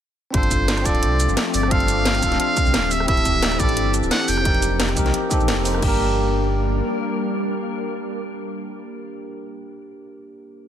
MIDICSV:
0, 0, Header, 1, 6, 480
1, 0, Start_track
1, 0, Key_signature, -2, "minor"
1, 0, Tempo, 342857
1, 477, Time_signature, 4, 2, 24, 8
1, 14952, End_track
2, 0, Start_track
2, 0, Title_t, "Muted trumpet"
2, 0, Program_c, 0, 59
2, 476, Note_on_c, 0, 72, 91
2, 1194, Note_on_c, 0, 74, 100
2, 1215, Note_off_c, 0, 72, 0
2, 1916, Note_off_c, 0, 74, 0
2, 2160, Note_on_c, 0, 74, 94
2, 2397, Note_on_c, 0, 77, 108
2, 2418, Note_off_c, 0, 74, 0
2, 3348, Note_off_c, 0, 77, 0
2, 3357, Note_on_c, 0, 77, 106
2, 4077, Note_on_c, 0, 76, 99
2, 4098, Note_off_c, 0, 77, 0
2, 4307, Note_off_c, 0, 76, 0
2, 4316, Note_on_c, 0, 76, 111
2, 5033, Note_on_c, 0, 74, 108
2, 5054, Note_off_c, 0, 76, 0
2, 5515, Note_off_c, 0, 74, 0
2, 5753, Note_on_c, 0, 78, 108
2, 5993, Note_on_c, 0, 79, 111
2, 6014, Note_off_c, 0, 78, 0
2, 6715, Note_off_c, 0, 79, 0
2, 14952, End_track
3, 0, Start_track
3, 0, Title_t, "Tine electric piano"
3, 0, Program_c, 1, 4
3, 427, Note_on_c, 1, 60, 77
3, 458, Note_on_c, 1, 62, 72
3, 491, Note_on_c, 1, 65, 72
3, 525, Note_on_c, 1, 69, 86
3, 705, Control_c, 1, 64, 127
3, 1129, Note_off_c, 1, 60, 0
3, 1146, Note_on_c, 1, 60, 75
3, 1161, Note_off_c, 1, 62, 0
3, 1177, Note_off_c, 1, 65, 0
3, 1178, Note_on_c, 1, 62, 72
3, 1194, Note_off_c, 1, 69, 0
3, 1212, Note_on_c, 1, 65, 69
3, 1245, Note_on_c, 1, 69, 84
3, 2332, Note_off_c, 1, 60, 0
3, 2349, Note_on_c, 1, 60, 79
3, 2361, Note_off_c, 1, 62, 0
3, 2377, Note_off_c, 1, 65, 0
3, 2380, Note_on_c, 1, 62, 72
3, 2394, Note_off_c, 1, 69, 0
3, 2413, Note_on_c, 1, 65, 70
3, 2447, Note_on_c, 1, 69, 87
3, 3052, Note_off_c, 1, 60, 0
3, 3069, Note_on_c, 1, 60, 75
3, 3082, Note_off_c, 1, 62, 0
3, 3098, Note_off_c, 1, 65, 0
3, 3101, Note_on_c, 1, 62, 71
3, 3115, Note_off_c, 1, 69, 0
3, 3134, Note_on_c, 1, 65, 70
3, 3167, Note_on_c, 1, 69, 84
3, 4039, Note_off_c, 1, 60, 0
3, 4056, Note_off_c, 1, 62, 0
3, 4072, Note_off_c, 1, 65, 0
3, 4088, Note_off_c, 1, 69, 0
3, 4092, Control_c, 1, 64, 0
3, 4264, Note_on_c, 1, 60, 80
3, 4297, Note_on_c, 1, 64, 75
3, 4330, Note_on_c, 1, 67, 71
3, 4362, Note_on_c, 1, 69, 90
3, 4364, Control_c, 1, 64, 127
3, 4969, Note_off_c, 1, 60, 0
3, 4985, Note_on_c, 1, 60, 78
3, 5000, Note_off_c, 1, 64, 0
3, 5016, Note_off_c, 1, 67, 0
3, 5018, Note_on_c, 1, 64, 69
3, 5033, Note_off_c, 1, 69, 0
3, 5051, Note_on_c, 1, 67, 71
3, 5084, Note_on_c, 1, 69, 84
3, 6170, Note_off_c, 1, 60, 0
3, 6186, Note_on_c, 1, 60, 81
3, 6201, Note_off_c, 1, 64, 0
3, 6217, Note_off_c, 1, 67, 0
3, 6219, Note_on_c, 1, 63, 74
3, 6233, Note_off_c, 1, 69, 0
3, 6252, Note_on_c, 1, 67, 73
3, 6256, Control_c, 1, 64, 0
3, 6283, Note_on_c, 1, 70, 88
3, 6487, Control_c, 1, 64, 127
3, 6905, Note_off_c, 1, 60, 0
3, 6921, Note_off_c, 1, 63, 0
3, 6930, Note_on_c, 1, 60, 80
3, 6937, Note_off_c, 1, 67, 0
3, 6946, Note_on_c, 1, 63, 71
3, 6953, Note_off_c, 1, 70, 0
3, 6962, Note_on_c, 1, 67, 73
3, 6980, Note_on_c, 1, 70, 84
3, 7397, Note_off_c, 1, 60, 0
3, 7409, Note_off_c, 1, 63, 0
3, 7414, Note_on_c, 1, 60, 85
3, 7417, Note_off_c, 1, 67, 0
3, 7426, Note_off_c, 1, 70, 0
3, 7429, Note_on_c, 1, 63, 77
3, 7446, Note_on_c, 1, 67, 75
3, 7463, Note_on_c, 1, 69, 94
3, 7875, Note_off_c, 1, 60, 0
3, 7886, Note_off_c, 1, 63, 0
3, 7892, Note_on_c, 1, 60, 72
3, 7895, Note_off_c, 1, 67, 0
3, 7903, Note_off_c, 1, 69, 0
3, 7909, Note_on_c, 1, 63, 68
3, 7924, Note_on_c, 1, 67, 67
3, 7941, Note_on_c, 1, 72, 82
3, 8087, Note_on_c, 1, 58, 88
3, 8117, Note_off_c, 1, 60, 0
3, 8126, Note_off_c, 1, 63, 0
3, 8134, Note_off_c, 1, 67, 0
3, 8134, Note_on_c, 1, 62, 78
3, 8142, Note_off_c, 1, 72, 0
3, 8174, Control_c, 1, 64, 0
3, 8184, Note_on_c, 1, 67, 81
3, 8233, Note_on_c, 1, 70, 99
3, 8432, Control_c, 1, 64, 127
3, 12697, Note_off_c, 1, 58, 0
3, 12744, Note_off_c, 1, 62, 0
3, 12794, Note_off_c, 1, 67, 0
3, 12843, Note_off_c, 1, 70, 0
3, 14952, End_track
4, 0, Start_track
4, 0, Title_t, "Ambient pad"
4, 0, Program_c, 2, 92
4, 475, Note_on_c, 2, 60, 78
4, 475, Note_on_c, 2, 67, 95
4, 476, Note_on_c, 2, 53, 84
4, 476, Note_on_c, 2, 57, 77
4, 4040, Note_off_c, 2, 53, 0
4, 4040, Note_off_c, 2, 60, 0
4, 4041, Note_off_c, 2, 57, 0
4, 4075, Note_on_c, 2, 60, 76
4, 4075, Note_on_c, 2, 62, 78
4, 4076, Note_on_c, 2, 52, 84
4, 6214, Note_off_c, 2, 60, 0
4, 6214, Note_off_c, 2, 62, 0
4, 6215, Note_off_c, 2, 52, 0
4, 6235, Note_on_c, 2, 58, 80
4, 6235, Note_on_c, 2, 63, 80
4, 6237, Note_on_c, 2, 53, 82
4, 8100, Note_off_c, 2, 67, 0
4, 8137, Note_off_c, 2, 58, 0
4, 8137, Note_off_c, 2, 63, 0
4, 8138, Note_off_c, 2, 53, 0
4, 8152, Note_on_c, 2, 62, 81
4, 8153, Note_on_c, 2, 55, 90
4, 8153, Note_on_c, 2, 70, 98
4, 8154, Note_on_c, 2, 58, 81
4, 12762, Note_off_c, 2, 62, 0
4, 12763, Note_off_c, 2, 70, 0
4, 12764, Note_off_c, 2, 55, 0
4, 12764, Note_off_c, 2, 58, 0
4, 14952, End_track
5, 0, Start_track
5, 0, Title_t, "Sub bass"
5, 0, Program_c, 3, 38
5, 476, Note_on_c, 3, 31, 101
5, 1179, Note_off_c, 3, 31, 0
5, 1197, Note_on_c, 3, 26, 91
5, 1438, Note_on_c, 3, 36, 103
5, 1459, Note_off_c, 3, 26, 0
5, 1785, Note_off_c, 3, 36, 0
5, 1805, Note_on_c, 3, 31, 86
5, 1906, Note_off_c, 3, 31, 0
5, 2157, Note_on_c, 3, 31, 102
5, 3099, Note_off_c, 3, 31, 0
5, 3117, Note_on_c, 3, 26, 93
5, 3335, Note_off_c, 3, 26, 0
5, 3725, Note_on_c, 3, 36, 105
5, 3838, Note_on_c, 3, 26, 86
5, 3859, Note_off_c, 3, 36, 0
5, 4299, Note_off_c, 3, 26, 0
5, 4317, Note_on_c, 3, 26, 100
5, 5019, Note_off_c, 3, 26, 0
5, 5037, Note_on_c, 3, 33, 92
5, 5276, Note_on_c, 3, 31, 106
5, 5297, Note_off_c, 3, 33, 0
5, 5624, Note_off_c, 3, 31, 0
5, 5643, Note_on_c, 3, 26, 88
5, 5745, Note_off_c, 3, 26, 0
5, 5996, Note_on_c, 3, 29, 106
5, 6939, Note_off_c, 3, 29, 0
5, 6956, Note_on_c, 3, 36, 91
5, 7174, Note_off_c, 3, 36, 0
5, 7565, Note_on_c, 3, 34, 102
5, 7678, Note_on_c, 3, 29, 85
5, 7699, Note_off_c, 3, 34, 0
5, 8139, Note_off_c, 3, 29, 0
5, 8157, Note_on_c, 3, 31, 95
5, 9541, Note_off_c, 3, 31, 0
5, 14952, End_track
6, 0, Start_track
6, 0, Title_t, "Drums"
6, 475, Note_on_c, 9, 42, 96
6, 476, Note_on_c, 9, 36, 112
6, 604, Note_off_c, 9, 42, 0
6, 604, Note_on_c, 9, 42, 40
6, 616, Note_off_c, 9, 36, 0
6, 715, Note_off_c, 9, 42, 0
6, 715, Note_on_c, 9, 42, 68
6, 715, Note_on_c, 9, 82, 59
6, 717, Note_on_c, 9, 36, 60
6, 855, Note_off_c, 9, 42, 0
6, 855, Note_off_c, 9, 82, 0
6, 857, Note_off_c, 9, 36, 0
6, 955, Note_on_c, 9, 38, 117
6, 955, Note_on_c, 9, 42, 97
6, 1085, Note_off_c, 9, 42, 0
6, 1085, Note_on_c, 9, 37, 52
6, 1085, Note_on_c, 9, 42, 39
6, 1095, Note_off_c, 9, 38, 0
6, 1197, Note_off_c, 9, 42, 0
6, 1197, Note_on_c, 9, 36, 108
6, 1197, Note_on_c, 9, 42, 71
6, 1197, Note_on_c, 9, 82, 61
6, 1225, Note_off_c, 9, 37, 0
6, 1326, Note_off_c, 9, 42, 0
6, 1326, Note_on_c, 9, 42, 37
6, 1337, Note_off_c, 9, 36, 0
6, 1337, Note_off_c, 9, 82, 0
6, 1437, Note_off_c, 9, 42, 0
6, 1437, Note_on_c, 9, 42, 94
6, 1577, Note_off_c, 9, 42, 0
6, 1677, Note_on_c, 9, 42, 66
6, 1677, Note_on_c, 9, 82, 59
6, 1805, Note_off_c, 9, 82, 0
6, 1805, Note_on_c, 9, 82, 27
6, 1817, Note_off_c, 9, 42, 0
6, 1917, Note_on_c, 9, 38, 116
6, 1917, Note_on_c, 9, 42, 95
6, 1945, Note_off_c, 9, 82, 0
6, 2057, Note_off_c, 9, 38, 0
6, 2057, Note_off_c, 9, 42, 0
6, 2157, Note_on_c, 9, 46, 78
6, 2157, Note_on_c, 9, 82, 61
6, 2285, Note_on_c, 9, 37, 49
6, 2297, Note_off_c, 9, 46, 0
6, 2297, Note_off_c, 9, 82, 0
6, 2397, Note_on_c, 9, 36, 118
6, 2397, Note_on_c, 9, 42, 93
6, 2425, Note_off_c, 9, 37, 0
6, 2525, Note_off_c, 9, 42, 0
6, 2525, Note_on_c, 9, 42, 39
6, 2537, Note_off_c, 9, 36, 0
6, 2637, Note_off_c, 9, 42, 0
6, 2637, Note_on_c, 9, 42, 66
6, 2637, Note_on_c, 9, 82, 58
6, 2777, Note_off_c, 9, 42, 0
6, 2777, Note_off_c, 9, 82, 0
6, 2876, Note_on_c, 9, 38, 126
6, 2876, Note_on_c, 9, 42, 93
6, 3006, Note_off_c, 9, 42, 0
6, 3006, Note_on_c, 9, 37, 52
6, 3006, Note_on_c, 9, 42, 39
6, 3016, Note_off_c, 9, 38, 0
6, 3116, Note_off_c, 9, 42, 0
6, 3116, Note_on_c, 9, 42, 68
6, 3116, Note_on_c, 9, 82, 58
6, 3117, Note_on_c, 9, 36, 64
6, 3146, Note_off_c, 9, 37, 0
6, 3245, Note_off_c, 9, 42, 0
6, 3245, Note_on_c, 9, 38, 36
6, 3245, Note_on_c, 9, 42, 36
6, 3256, Note_off_c, 9, 82, 0
6, 3257, Note_off_c, 9, 36, 0
6, 3356, Note_off_c, 9, 42, 0
6, 3356, Note_on_c, 9, 42, 93
6, 3385, Note_off_c, 9, 38, 0
6, 3496, Note_off_c, 9, 42, 0
6, 3596, Note_on_c, 9, 42, 67
6, 3596, Note_on_c, 9, 82, 58
6, 3597, Note_on_c, 9, 36, 114
6, 3725, Note_off_c, 9, 82, 0
6, 3725, Note_on_c, 9, 82, 26
6, 3736, Note_off_c, 9, 42, 0
6, 3737, Note_off_c, 9, 36, 0
6, 3835, Note_on_c, 9, 38, 122
6, 3835, Note_on_c, 9, 42, 91
6, 3865, Note_off_c, 9, 82, 0
6, 3975, Note_off_c, 9, 38, 0
6, 3975, Note_off_c, 9, 42, 0
6, 4075, Note_on_c, 9, 46, 83
6, 4075, Note_on_c, 9, 82, 59
6, 4204, Note_on_c, 9, 37, 51
6, 4215, Note_off_c, 9, 46, 0
6, 4215, Note_off_c, 9, 82, 0
6, 4315, Note_on_c, 9, 42, 88
6, 4317, Note_on_c, 9, 36, 123
6, 4344, Note_off_c, 9, 37, 0
6, 4443, Note_off_c, 9, 42, 0
6, 4443, Note_on_c, 9, 42, 38
6, 4457, Note_off_c, 9, 36, 0
6, 4555, Note_off_c, 9, 42, 0
6, 4555, Note_on_c, 9, 42, 65
6, 4555, Note_on_c, 9, 82, 58
6, 4557, Note_on_c, 9, 36, 65
6, 4695, Note_off_c, 9, 42, 0
6, 4695, Note_off_c, 9, 82, 0
6, 4697, Note_off_c, 9, 36, 0
6, 4795, Note_on_c, 9, 38, 127
6, 4795, Note_on_c, 9, 42, 94
6, 4924, Note_off_c, 9, 42, 0
6, 4924, Note_on_c, 9, 37, 51
6, 4924, Note_on_c, 9, 42, 37
6, 4935, Note_off_c, 9, 38, 0
6, 5036, Note_off_c, 9, 42, 0
6, 5036, Note_on_c, 9, 42, 65
6, 5036, Note_on_c, 9, 82, 56
6, 5037, Note_on_c, 9, 36, 108
6, 5064, Note_off_c, 9, 37, 0
6, 5163, Note_off_c, 9, 42, 0
6, 5163, Note_on_c, 9, 42, 36
6, 5176, Note_off_c, 9, 82, 0
6, 5177, Note_off_c, 9, 36, 0
6, 5275, Note_off_c, 9, 42, 0
6, 5275, Note_on_c, 9, 42, 89
6, 5415, Note_off_c, 9, 42, 0
6, 5515, Note_on_c, 9, 42, 65
6, 5515, Note_on_c, 9, 82, 56
6, 5645, Note_off_c, 9, 82, 0
6, 5645, Note_on_c, 9, 82, 26
6, 5655, Note_off_c, 9, 42, 0
6, 5755, Note_on_c, 9, 38, 127
6, 5755, Note_on_c, 9, 42, 93
6, 5785, Note_off_c, 9, 82, 0
6, 5895, Note_off_c, 9, 38, 0
6, 5895, Note_off_c, 9, 42, 0
6, 5995, Note_on_c, 9, 46, 83
6, 5995, Note_on_c, 9, 82, 58
6, 6124, Note_on_c, 9, 37, 50
6, 6135, Note_off_c, 9, 46, 0
6, 6135, Note_off_c, 9, 82, 0
6, 6235, Note_on_c, 9, 42, 88
6, 6236, Note_on_c, 9, 36, 119
6, 6264, Note_off_c, 9, 37, 0
6, 6363, Note_off_c, 9, 42, 0
6, 6363, Note_on_c, 9, 42, 36
6, 6376, Note_off_c, 9, 36, 0
6, 6474, Note_off_c, 9, 42, 0
6, 6474, Note_on_c, 9, 42, 63
6, 6474, Note_on_c, 9, 82, 58
6, 6614, Note_off_c, 9, 42, 0
6, 6614, Note_off_c, 9, 82, 0
6, 6715, Note_on_c, 9, 38, 126
6, 6715, Note_on_c, 9, 42, 90
6, 6843, Note_off_c, 9, 42, 0
6, 6843, Note_on_c, 9, 37, 50
6, 6843, Note_on_c, 9, 42, 37
6, 6855, Note_off_c, 9, 38, 0
6, 6954, Note_off_c, 9, 42, 0
6, 6954, Note_on_c, 9, 42, 63
6, 6954, Note_on_c, 9, 82, 58
6, 6957, Note_on_c, 9, 36, 65
6, 6983, Note_off_c, 9, 37, 0
6, 7081, Note_off_c, 9, 42, 0
6, 7081, Note_on_c, 9, 38, 37
6, 7081, Note_on_c, 9, 42, 34
6, 7094, Note_off_c, 9, 82, 0
6, 7097, Note_off_c, 9, 36, 0
6, 7195, Note_off_c, 9, 42, 0
6, 7195, Note_on_c, 9, 42, 86
6, 7221, Note_off_c, 9, 38, 0
6, 7335, Note_off_c, 9, 42, 0
6, 7435, Note_on_c, 9, 42, 65
6, 7435, Note_on_c, 9, 82, 57
6, 7437, Note_on_c, 9, 36, 112
6, 7563, Note_off_c, 9, 82, 0
6, 7563, Note_on_c, 9, 82, 27
6, 7575, Note_off_c, 9, 42, 0
6, 7577, Note_off_c, 9, 36, 0
6, 7674, Note_on_c, 9, 38, 124
6, 7674, Note_on_c, 9, 42, 89
6, 7703, Note_off_c, 9, 82, 0
6, 7814, Note_off_c, 9, 38, 0
6, 7814, Note_off_c, 9, 42, 0
6, 7915, Note_on_c, 9, 46, 84
6, 7915, Note_on_c, 9, 82, 60
6, 8043, Note_on_c, 9, 37, 47
6, 8055, Note_off_c, 9, 46, 0
6, 8055, Note_off_c, 9, 82, 0
6, 8155, Note_on_c, 9, 49, 86
6, 8157, Note_on_c, 9, 36, 109
6, 8183, Note_off_c, 9, 37, 0
6, 8295, Note_off_c, 9, 49, 0
6, 8297, Note_off_c, 9, 36, 0
6, 14952, End_track
0, 0, End_of_file